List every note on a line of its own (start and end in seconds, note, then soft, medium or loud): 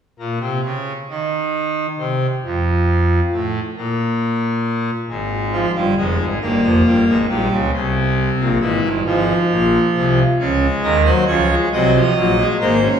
0.19 0.39 A#2 medium
0.40 0.60 C3 medium
0.65 0.92 C#3 medium
1.10 1.86 D#3 medium
1.99 2.26 C3 medium
2.45 3.20 F2 medium
3.33 3.60 A2 medium
3.77 4.90 A#2 medium
5.09 5.66 G#1 medium
5.09 5.66 G#2 medium
5.52 5.71 F3 medium
5.75 5.94 G1 medium
5.75 5.94 G2 medium
5.75 5.94 G3 medium
5.97 6.16 F1 medium
5.97 6.16 F2 medium
5.97 6.25 G#3 medium
6.19 6.38 G#1 medium
6.19 6.38 G#2 medium
6.42 6.61 G1 medium
6.42 6.61 G2 medium
6.42 7.17 A#3 medium
6.62 6.82 F1 medium
6.62 6.81 F2 medium
6.85 7.04 G1 medium
6.85 7.04 G2 medium
7.07 7.26 G#1 medium
7.07 7.26 G#2 medium
7.29 7.48 A#1 medium
7.29 7.48 A#2 medium
7.29 7.56 G3 medium
7.52 7.71 C#2 medium
7.52 7.71 C#3 medium
7.73 8.30 C2 medium
7.73 8.49 C3 medium
8.40 8.59 A#1 medium
8.40 8.58 A#2 medium
8.60 8.80 G#1 medium
8.60 8.80 G#2 medium
8.60 8.88 E3 medium
8.84 9.02 G1 medium
8.84 9.03 G2 medium
9.05 9.33 G#1 medium
9.05 9.33 G#2 medium
9.05 10.19 F3 medium
9.51 9.78 A#1 medium
9.51 9.78 A#2 medium
9.96 10.23 C2 medium
9.96 10.22 C3 medium
10.39 10.67 C#2 medium
10.39 10.66 C#3 medium
10.39 10.96 G#3 medium
10.83 11.11 D#2 medium
10.83 11.10 D#3 medium
10.83 11.02 A#4 medium
11.05 11.25 F#3 medium
11.05 11.24 C5 medium
11.28 11.55 C#2 medium
11.28 11.55 C#3 medium
11.28 11.46 F3 medium
11.28 11.55 C#5 medium
11.50 11.69 G#3 medium
11.73 12.00 C2 medium
11.73 12.00 C3 medium
11.73 11.91 F#3 medium
11.73 12.48 D#5 medium
11.95 12.13 F3 medium
12.16 12.43 A#1 medium
12.16 12.44 A#2 medium
12.16 12.35 F#3 medium
12.39 12.57 G#3 medium
12.60 12.88 G#1 medium
12.60 12.88 G#2 medium
12.60 12.79 A#3 medium
12.60 12.88 C5 loud
12.83 13.00 C#4 medium